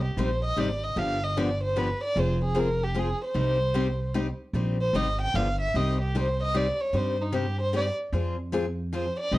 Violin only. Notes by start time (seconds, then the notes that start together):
0.04 G4
0.19 C5
0.44 D#5
0.60 D5
0.84 D#5
0.99 F5
1.24 D#5
1.38 D5
1.64 C5
1.78 B4
2.04 D5
2.19 C5
2.44 G#4
2.59 A#4
2.83 G4
2.99 G#4
3.25 C5
4.82 C5
4.96 D#5
5.21 G5
5.35 F5
5.61 E5
5.75 D#5
6.01 G4
6.16 C5
6.43 D#5
6.56 D5
6.81 C#5
6.96 C5
7.21 D#4
7.35 G4
7.61 C5
7.76 D5
8.95 C5
9.20 D5
9.34 D#5